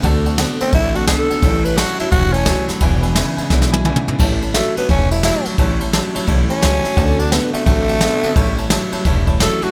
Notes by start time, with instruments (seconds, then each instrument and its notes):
0.02 upright bass D2, steel-string acoustic guitar D3 A3 C4 F#4, clean electric guitar D3 A3, honky-tonk piano D5 F#5 A5, kick, ride
0.25 steel-string acoustic guitar A3 C4 F#4, honky-tonk piano D5 F#5 A5, ride
0.37 steel-string acoustic guitar D3 A3 C4 F#4, clean electric guitar D3 B3, honky-tonk piano D5 F#5 A5, snare, ride
0.60 clean electric guitar D3 B3, steel-string acoustic guitar A3 C4 F#4, tenor saxophone C4, honky-tonk piano D5 F#5 A5, muted upright bass stroke, ride
0.71 upright bass A1, steel-string acoustic guitar D3 A3 C4 F#4, clean electric guitar D3 A3, tenor saxophone E4, honky-tonk piano D5 F#5 A5, kick, ride
0.94 steel-string acoustic guitar A3 C4 F#4, tenor saxophone F#4, honky-tonk piano D5 F#5 A5, ride
1.07 steel-string acoustic guitar D3 A3 C4 F#4, clean electric guitar D3 B3, tenor saxophone A4, honky-tonk piano D5 F#5 A5, kick, snare, ride
1.28 clean electric guitar D3 B3, steel-string acoustic guitar A3 C4 F#4, honky-tonk piano D5 F#5 A5, muted upright bass stroke, ride
1.41 upright bass A1, steel-string acoustic guitar A2 E3 G3 C#4 E4, clean electric guitar A2 E3, honky-tonk piano C#5 E5 A5, kick, ride
1.63 steel-string acoustic guitar G3 C#4 E4, tenor saxophone B4, honky-tonk piano C#5 E5 A5, ride
1.76 clean electric guitar A2 F#3, steel-string acoustic guitar E3 G3 C#4 E4, tenor saxophone F#4, honky-tonk piano C#5 E5 A5, snare, ride
1.98 clean electric guitar A2 F#3, steel-string acoustic guitar G3 C#4 E4, tenor saxophone E4, honky-tonk piano C#5 E5 A5, muted upright bass stroke, ride
2.11 upright bass E1, steel-string acoustic guitar A2 E3 G3 C#4 E4, clean electric guitar A2 E3, tenor saxophone F#4, honky-tonk piano C#5 E5 A5, kick, ride
2.32 steel-string acoustic guitar G3 C#4 E4, tenor saxophone C#4, honky-tonk piano C#5 E5 A5, ride
2.45 clean electric guitar A2 F#3, steel-string acoustic guitar E3 G3 C#4 E4, honky-tonk piano C#5 E5 A5, kick, snare, ride
2.68 clean electric guitar A2 F#3, steel-string acoustic guitar G3 C#4 E4, honky-tonk piano C#5 E5 A5, muted upright bass stroke, snare, ride
2.80 upright bass E1, steel-string acoustic guitar E2 B2 E3 G#3 D4 E4, clean electric guitar E2 B2, honky-tonk piano B4 E5 G#5, kick, ride
3.02 steel-string acoustic guitar E3 G#3 D4 E4, honky-tonk piano B4 E5 G#5, ride
3.14 clean electric guitar E2 C#3, steel-string acoustic guitar E3 G#3 D4 E4, honky-tonk piano B4 E5 G#5, snare, ride
3.36 clean electric guitar E2 C#3, steel-string acoustic guitar E3 G#3 D4 E4, honky-tonk piano B4 E5 G#5, muted upright bass stroke, ride
3.50 upright bass B1, steel-string acoustic guitar E2 B2 E3 G#3 D4 E4, clean electric guitar E2 B2, honky-tonk piano B4 E5 G#5, kick, snare
3.62 snare
3.71 steel-string acoustic guitar E3 G#3 D4 E4, honky-tonk piano B4 E5 G#5, high tom
3.85 clean electric guitar E2 C#3, steel-string acoustic guitar E3 G#3 D4 E4, honky-tonk piano B4 E5 G#5, mid tom
3.96 mid tom
4.07 clean electric guitar E2 C#3, steel-string acoustic guitar E3 G#3 D4 E4, honky-tonk piano B4 E5 G#5, muted upright bass stroke, floor tom
4.19 upright bass A1, steel-string acoustic guitar A2 E3 G3 C#4 E4, clean electric guitar A2 E3, honky-tonk piano C#5 E5 A5, kick, crash
4.41 steel-string acoustic guitar G3 C#4 E4, honky-tonk piano C#5 E5 A5, ride
4.54 clean electric guitar A2 F#3, steel-string acoustic guitar E3 G3 C#4 E4, tenor saxophone A3, honky-tonk piano C#5 E5 A5, snare, ride
4.76 clean electric guitar A2 F#3, steel-string acoustic guitar G3 C#4 E4, tenor saxophone B3, honky-tonk piano C#5 E5 A5, muted upright bass stroke, ride
4.88 upright bass E1, steel-string acoustic guitar A2 E3 G3 C#4 E4, clean electric guitar A2 E3, tenor saxophone C#4, honky-tonk piano C#5 E5 A5, kick, ride
5.10 steel-string acoustic guitar G3 C#4 E4, tenor saxophone E4, honky-tonk piano C#5 E5 A5, ride
5.23 clean electric guitar A2 F#3, steel-string acoustic guitar E3 G3 C#4 E4, tenor saxophone E4, honky-tonk piano C#5 E5 A5, snare, ride
5.45 clean electric guitar A2 F#3, steel-string acoustic guitar G3 C#4 E4, honky-tonk piano C#5 E5 A5, muted upright bass stroke, ride
5.58 upright bass A1, clean electric guitar A2 E3, steel-string acoustic guitar A2 E3 G3 C#4 E4, honky-tonk piano C#5 E5 A5, kick, ride
5.80 steel-string acoustic guitar G3 C#4 E4, honky-tonk piano C#5 E5 A5, ride
5.92 clean electric guitar A2 F#3, steel-string acoustic guitar E3 G3 C#4 E4, honky-tonk piano C#5 E5 A5, snare, ride
6.14 clean electric guitar A2 F#3, steel-string acoustic guitar G3 C#4 E4, honky-tonk piano C#5 E5 A5, muted upright bass stroke, ride
6.26 upright bass B1, steel-string acoustic guitar A2 E3 G3 C#4 E4, clean electric guitar A2 E3, honky-tonk piano C#5 E5 A5, kick, ride
6.50 steel-string acoustic guitar G3 C#4 E4, tenor saxophone C#4, honky-tonk piano C#5 E5 A5, ride
6.62 upright bass C#2, clean electric guitar A2 F#3, steel-string acoustic guitar E3 G3 C#4 E4, honky-tonk piano C#5 E5 A5, snare, ride
6.83 clean electric guitar A2 F#3, steel-string acoustic guitar G3 C#4 E4, honky-tonk piano C#5 E5 A5, ride
6.97 upright bass D2, clean electric guitar D3 A3, steel-string acoustic guitar D3 A3 C4 F#4, honky-tonk piano D5 F#5 A5, kick, ride
7.19 steel-string acoustic guitar A3 C4 F#4, tenor saxophone D4, honky-tonk piano D5 F#5 A5, ride
7.31 steel-string acoustic guitar D3 A3 C4 F#4, clean electric guitar D3 B3, tenor saxophone B3, honky-tonk piano D5 F#5 A5, snare, ride
7.53 clean electric guitar D3 B3, tenor saxophone A3, steel-string acoustic guitar A3 C4 F#4, honky-tonk piano D5 F#5 A5, muted upright bass stroke, ride
7.66 upright bass A1, steel-string acoustic guitar D3 A3 C4 F#4, clean electric guitar D3 A3, tenor saxophone A3, honky-tonk piano D5 F#5 A5, kick, ride
7.88 steel-string acoustic guitar A3 C4 F#4, honky-tonk piano D5 F#5 A5, ride
8.01 steel-string acoustic guitar D3 A3 C4 F#4, clean electric guitar D3 B3, honky-tonk piano D5 F#5 A5, snare, ride
8.23 clean electric guitar D3 B3, steel-string acoustic guitar A3 C4 F#4, honky-tonk piano D5 F#5 A5, muted upright bass stroke, ride
8.35 upright bass A1, clean electric guitar A2 E3, steel-string acoustic guitar A2 E3 G3 C#4 E4, honky-tonk piano C#5 E5 A5, kick, ride
8.57 steel-string acoustic guitar G3 C#4 E4, honky-tonk piano C#5 E5 A5, ride
8.69 clean electric guitar A2 F#3, steel-string acoustic guitar E3 G3 C#4 E4, honky-tonk piano C#5 E5 A5, snare, ride
8.91 clean electric guitar A2 F#3, steel-string acoustic guitar G3 C#4 E4, honky-tonk piano C#5 E5 A5, muted upright bass stroke, ride
9.05 upright bass E1, clean electric guitar A2 E3, steel-string acoustic guitar A2 E3 G3 C#4 E4, honky-tonk piano C#5 E5 A5, kick, snare, ride
9.27 steel-string acoustic guitar G3 C#4 E4, honky-tonk piano C#5 E5 A5, kick, ride
9.39 clean electric guitar A2 F#3, steel-string acoustic guitar E3 G3 C#4 E4, tenor saxophone A4, honky-tonk piano C#5 E5 A5, snare, ride
9.61 clean electric guitar A2 F#3, steel-string acoustic guitar G3 C#4 E4, tenor saxophone F#4, honky-tonk piano C#5 E5 A5, muted upright bass stroke, ride